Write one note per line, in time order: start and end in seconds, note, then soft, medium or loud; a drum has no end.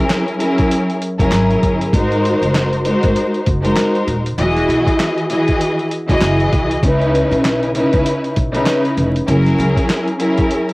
0.00 0.33 F#3 loud
0.00 0.34 C#4 medium
0.00 0.34 E4 medium
0.00 0.34 G#4 medium
0.00 0.34 A#4 loud
0.10 snare loud
0.10 clap medium
0.10 closed hi-hat medium
0.28 closed hi-hat soft
0.38 0.96 F#3 loud
0.38 0.97 C#4 medium
0.38 0.97 E4 medium
0.38 0.97 G#4 medium
0.38 0.97 A#4 loud
0.38 closed hi-hat medium
0.58 kick medium
0.58 closed hi-hat medium
0.71 closed hi-hat loud
0.90 closed hi-hat soft
1.02 closed hi-hat medium
1.18 1.29 F#1 medium
1.18 1.88 F#3 loud
1.18 1.88 C#4 medium
1.18 1.88 E4 medium
1.18 1.88 G#4 medium
1.18 1.88 A#4 loud
1.18 kick medium
1.18 closed hi-hat medium
1.32 1.56 G#1 medium
1.32 snare loud
1.32 clap medium
1.32 closed hi-hat medium
1.51 closed hi-hat soft
1.63 1.87 G1 medium
1.63 kick medium
1.63 closed hi-hat medium
1.81 closed hi-hat medium
1.93 2.32 G#1 loud
1.93 2.79 G#3 medium
1.93 2.79 D#4 medium
1.93 2.79 F#4 medium
1.93 2.79 A#4 medium
1.93 2.79 C5 loud
1.93 kick loud
1.93 closed hi-hat medium
2.12 closed hi-hat soft
2.25 closed hi-hat medium
2.42 2.90 F#1 medium
2.42 closed hi-hat medium
2.55 snare loud
2.55 clap medium
2.55 closed hi-hat medium
2.73 closed hi-hat soft
2.83 3.41 G#3 loud
2.83 3.42 D#4 medium
2.83 3.42 F#4 medium
2.83 3.42 A#4 medium
2.83 3.42 C5 loud
2.83 closed hi-hat medium
3.03 3.14 G#1 medium
3.03 kick medium
3.03 closed hi-hat medium
3.16 closed hi-hat loud
3.34 closed hi-hat soft
3.46 3.71 F#1 medium
3.46 kick medium
3.46 closed hi-hat medium
3.62 4.19 G#3 loud
3.62 4.19 D#4 medium
3.62 4.19 F#4 medium
3.62 4.19 A#4 medium
3.62 4.19 C5 medium
3.62 closed hi-hat medium
3.76 snare loud
3.76 clap medium
3.76 closed hi-hat medium
3.95 closed hi-hat soft
4.07 4.32 D#1 medium
4.07 closed hi-hat medium
4.26 closed hi-hat medium
4.38 4.62 E1 loud
4.38 5.24 E3 medium
4.38 5.24 E4 loud
4.38 5.24 F#4 loud
4.38 5.24 G#4 medium
4.38 5.24 D#5 loud
4.38 closed hi-hat loud
4.57 snare soft
4.57 closed hi-hat soft
4.68 4.83 B1 medium
4.68 closed hi-hat medium
4.87 kick medium
4.87 closed hi-hat medium
5.00 snare loud
5.00 clap medium
5.00 closed hi-hat medium
5.18 closed hi-hat soft
5.29 5.87 E3 loud
5.29 5.87 E4 medium
5.29 5.87 F#4 medium
5.29 5.87 G#4 medium
5.29 5.87 D#5 loud
5.29 closed hi-hat medium
5.48 kick medium
5.48 closed hi-hat medium
5.61 closed hi-hat loud
5.79 closed hi-hat soft
5.91 closed hi-hat medium
6.08 6.19 E1 medium
6.08 6.77 E3 medium
6.08 6.78 E4 medium
6.08 6.78 F#4 medium
6.08 6.78 G#4 medium
6.08 6.78 D#5 loud
6.08 kick medium
6.08 closed hi-hat medium
6.21 6.46 F#1 loud
6.21 snare loud
6.21 clap medium
6.21 closed hi-hat loud
6.40 closed hi-hat soft
6.53 6.77 C2 medium
6.53 kick medium
6.53 closed hi-hat medium
6.71 closed hi-hat medium
6.83 7.21 C#2 loud
6.83 7.69 C#3 loud
6.83 7.69 C#4 loud
6.83 7.69 D#4 loud
6.83 7.70 E4 medium
6.83 7.70 B4 loud
6.83 kick loud
6.83 closed hi-hat medium
7.02 closed hi-hat soft
7.15 closed hi-hat medium
7.31 7.80 B1 medium
7.31 closed hi-hat medium
7.45 snare loud
7.45 clap medium
7.45 closed hi-hat medium
7.63 closed hi-hat soft
7.75 8.32 C#3 medium
7.75 8.32 C#4 medium
7.75 8.32 D#4 medium
7.75 8.32 E4 medium
7.75 8.33 B4 loud
7.75 closed hi-hat medium
7.93 8.03 C#2 medium
7.93 kick medium
7.93 closed hi-hat medium
8.06 closed hi-hat loud
8.24 closed hi-hat soft
8.36 8.61 B1 medium
8.36 kick medium
8.36 closed hi-hat medium
8.52 9.09 C#3 loud
8.52 9.09 C#4 medium
8.52 9.09 D#4 medium
8.52 9.09 E4 medium
8.52 9.09 B4 loud
8.52 closed hi-hat medium
8.66 snare loud
8.66 clap medium
8.66 closed hi-hat loud
8.85 closed hi-hat soft
8.97 9.22 F1 medium
8.97 closed hi-hat medium
9.16 closed hi-hat medium
9.27 9.52 F#1 loud
9.27 10.13 F#3 loud
9.27 10.13 C#4 medium
9.27 10.13 E4 medium
9.27 10.14 G#4 medium
9.27 10.14 A#4 loud
9.27 closed hi-hat medium
9.46 snare soft
9.46 closed hi-hat soft
9.58 9.73 C#2 medium
9.58 closed hi-hat medium
9.77 kick medium
9.77 closed hi-hat medium
9.90 snare loud
9.90 clap medium
9.90 closed hi-hat medium
10.08 closed hi-hat soft
10.18 10.73 F#3 medium
10.18 10.73 C#4 medium
10.18 10.73 E4 medium
10.18 10.73 G#4 medium
10.18 10.73 A#4 loud
10.18 closed hi-hat medium
10.38 kick medium
10.38 closed hi-hat medium
10.51 closed hi-hat loud
10.69 closed hi-hat soft